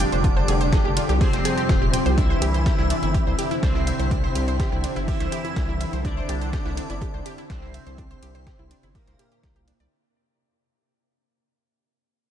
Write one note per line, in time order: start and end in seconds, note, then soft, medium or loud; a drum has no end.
0.00 9.97 F2 medium
0.00 9.97 C3 medium
0.00 1.11 D3 medium
0.00 2.14 F3 medium
0.00 2.14 G3 medium
0.00 1.11 D4 loud
0.00 2.14 G4 medium
0.00 1.12 D5 loud
0.00 0.09 G5 medium
0.00 closed hi-hat medium
0.12 0.41 F1 medium
0.12 0.21 C5 medium
0.12 closed hi-hat soft
0.24 0.36 F4 medium
0.24 kick loud
0.24 closed hi-hat soft
0.24 closed hi-hat medium
0.37 0.48 C5 loud
0.48 0.77 F1 loud
0.48 0.54 G#4 medium
0.48 closed hi-hat loud
0.48 closed hi-hat medium
0.48 ride medium
0.61 0.66 C5 medium
0.61 closed hi-hat soft
0.73 0.82 G#4 medium
0.73 kick loud
0.73 snare loud
0.73 closed hi-hat soft
0.73 closed hi-hat medium
0.85 0.99 F1 medium
0.85 0.93 G4 medium
0.97 1.09 F4 medium
0.97 closed hi-hat loud
0.97 closed hi-hat medium
0.97 ride medium
1.09 1.23 C2 medium
1.09 1.20 G4 medium
1.09 closed hi-hat soft
1.21 2.08 C3 medium
1.21 2.08 C4 loud
1.21 1.30 G#4 medium
1.21 2.08 C5 loud
1.21 kick loud
1.21 closed hi-hat soft
1.21 open hi-hat medium
1.33 1.40 F1 loud
1.33 1.45 C5 medium
1.33 snare medium
1.33 closed hi-hat medium
1.45 1.54 G#4 loud
1.45 closed hi-hat loud
1.45 closed hi-hat medium
1.45 ride medium
1.57 1.63 G4 medium
1.57 closed hi-hat soft
1.69 1.98 D#1 medium
1.69 1.81 F4 loud
1.69 kick loud
1.69 snare loud
1.69 closed hi-hat soft
1.69 closed hi-hat medium
1.82 1.90 G4 medium
1.93 2.02 G5 medium
1.93 closed hi-hat loud
1.93 closed hi-hat medium
1.93 ride medium
2.06 2.34 C2 medium
2.06 2.14 C5 medium
2.06 closed hi-hat soft
2.18 9.88 D3 medium
2.18 3.53 E3 medium
2.18 9.88 C4 medium
2.18 2.29 D4 medium
2.18 3.53 E4 loud
2.18 9.88 E4 medium
2.18 3.53 E5 loud
2.18 kick loud
2.18 closed hi-hat soft
2.18 closed hi-hat medium
2.30 2.41 C5 loud
2.42 2.71 C2 loud
2.42 2.47 G4 medium
2.42 closed hi-hat medium
2.42 closed hi-hat loud
2.42 ride medium
2.54 2.59 C5 medium
2.54 closed hi-hat soft
2.66 2.75 G4 medium
2.66 kick loud
2.66 snare loud
2.66 closed hi-hat soft
2.66 closed hi-hat medium
2.78 2.93 C2 medium
2.78 2.87 E4 medium
2.78 snare medium
2.90 3.02 D4 medium
2.90 closed hi-hat loud
2.90 closed hi-hat medium
2.90 ride medium
3.03 3.17 G1 medium
3.03 3.14 E4 medium
3.03 closed hi-hat soft
3.14 3.23 G4 medium
3.14 kick loud
3.14 closed hi-hat soft
3.14 closed hi-hat medium
3.27 3.34 C2 loud
3.27 3.38 C5 medium
3.39 3.48 G4 loud
3.39 closed hi-hat loud
3.39 closed hi-hat medium
3.39 ride medium
3.51 3.56 E4 medium
3.51 closed hi-hat soft
3.63 3.92 C2 medium
3.63 4.99 C3 medium
3.63 4.99 C4 loud
3.63 3.75 D4 loud
3.63 4.99 C5 loud
3.63 kick loud
3.63 snare loud
3.63 closed hi-hat medium
3.63 closed hi-hat soft
3.75 3.84 E4 medium
3.75 snare soft
3.87 3.96 E5 medium
3.87 closed hi-hat medium
3.87 closed hi-hat loud
3.87 ride medium
3.99 4.28 C2 medium
3.99 4.08 C5 medium
3.99 closed hi-hat soft
4.11 4.23 D4 medium
4.11 kick loud
4.11 closed hi-hat soft
4.11 closed hi-hat medium
4.24 4.35 C5 loud
4.35 4.64 C2 loud
4.35 4.41 G4 medium
4.35 closed hi-hat loud
4.35 closed hi-hat medium
4.35 ride medium
4.48 4.53 C5 medium
4.48 closed hi-hat soft
4.60 4.69 G4 medium
4.60 kick loud
4.60 snare loud
4.60 closed hi-hat soft
4.60 closed hi-hat medium
4.72 4.86 C2 medium
4.72 4.81 E4 medium
4.84 4.96 D4 medium
4.84 closed hi-hat loud
4.84 closed hi-hat medium
4.84 ride medium
4.96 5.11 G1 medium
4.96 5.07 E4 medium
4.96 closed hi-hat soft
5.08 5.95 E3 medium
5.08 5.95 E4 loud
5.08 5.17 G4 medium
5.08 5.95 E5 loud
5.08 kick loud
5.08 closed hi-hat soft
5.08 open hi-hat medium
5.20 5.27 C2 loud
5.20 5.32 C5 medium
5.20 snare medium
5.20 closed hi-hat medium
5.32 5.41 G4 loud
5.32 closed hi-hat medium
5.32 closed hi-hat loud
5.32 ride medium
5.45 5.50 E4 medium
5.45 closed hi-hat soft
5.56 5.85 C2 medium
5.56 5.68 D4 loud
5.56 kick loud
5.56 snare loud
5.56 closed hi-hat medium
5.56 closed hi-hat soft
5.69 5.77 E4 medium
5.81 5.90 E5 medium
5.81 closed hi-hat medium
5.81 closed hi-hat loud
5.81 ride medium
5.93 6.21 C2 medium
5.93 6.02 C5 medium
5.93 closed hi-hat soft
6.05 7.41 D3 medium
6.05 6.17 D4 medium
6.05 7.41 D4 loud
6.05 7.41 D5 loud
6.05 kick loud
6.05 closed hi-hat medium
6.05 closed hi-hat soft
6.17 6.28 C5 loud
6.29 6.58 C2 loud
6.29 6.34 G4 medium
6.29 closed hi-hat medium
6.29 closed hi-hat loud
6.29 ride medium
6.41 6.46 C5 medium
6.41 closed hi-hat soft
6.53 6.62 G4 medium
6.53 kick loud
6.53 snare loud
6.53 closed hi-hat medium
6.53 closed hi-hat soft
6.66 6.80 C2 medium
6.66 6.74 E4 medium
6.66 snare medium
6.77 6.89 D4 medium
6.77 closed hi-hat loud
6.77 closed hi-hat medium
6.77 ride medium
6.90 7.04 G1 medium
6.90 7.01 E4 medium
6.90 closed hi-hat soft
7.01 7.10 G4 medium
7.01 kick loud
7.01 closed hi-hat medium
7.01 closed hi-hat soft
7.14 7.21 C2 loud
7.14 7.25 C5 medium
7.26 7.35 G4 loud
7.26 closed hi-hat medium
7.26 closed hi-hat loud
7.26 ride medium
7.38 7.43 E4 medium
7.38 closed hi-hat soft
7.50 7.79 C2 loud
7.50 8.86 C3 medium
7.50 8.86 C4 loud
7.50 7.62 D4 loud
7.50 8.86 C5 loud
7.50 kick loud
7.50 snare loud
7.50 closed hi-hat medium
7.50 closed hi-hat soft
7.62 7.71 E4 medium
7.62 snare soft
7.74 7.83 E5 medium
7.74 closed hi-hat loud
7.74 closed hi-hat medium
7.74 ride medium
7.86 8.15 C2 medium
7.86 7.95 C5 medium
7.86 closed hi-hat soft
7.98 8.10 D4 medium
7.98 kick loud
7.98 closed hi-hat medium
7.98 closed hi-hat soft
8.11 8.22 C5 loud
8.11 closed hi-hat soft
8.22 8.51 C2 loud
8.22 8.28 G4 medium
8.22 closed hi-hat loud
8.22 closed hi-hat medium
8.22 ride medium
8.35 8.40 C5 medium
8.35 closed hi-hat soft
8.47 8.56 G4 medium
8.47 kick loud
8.47 snare loud
8.47 closed hi-hat soft
8.47 closed hi-hat medium
8.59 8.73 C2 medium
8.59 8.68 E4 medium
8.71 8.83 D4 medium
8.71 closed hi-hat loud
8.71 closed hi-hat medium
8.71 ride medium
8.83 8.98 G1 medium
8.83 8.95 E4 medium
8.83 closed hi-hat soft
8.95 9.82 A#2 medium
8.95 9.82 A#3 loud
8.95 9.04 G4 medium
8.95 9.82 A#4 loud
8.95 kick loud
8.95 closed hi-hat soft
8.95 open hi-hat medium
9.07 9.15 C2 loud
9.07 9.19 C5 medium
9.07 snare medium
9.07 closed hi-hat medium
9.19 9.28 G4 medium
9.19 closed hi-hat medium
9.19 closed hi-hat loud
9.19 ride medium
9.32 9.40 G4 medium
9.32 closed hi-hat soft
9.43 9.72 C2 medium
9.43 9.55 G4 medium
9.43 kick loud
9.43 snare loud
9.43 closed hi-hat soft
9.43 closed hi-hat medium
9.56 9.67 G4 medium
9.56 closed hi-hat soft
9.68 9.77 D4 medium
9.68 closed hi-hat loud
9.68 closed hi-hat medium
9.68 ride medium
9.80 9.87 C2 medium
9.80 9.91 D5 loud
9.80 closed hi-hat soft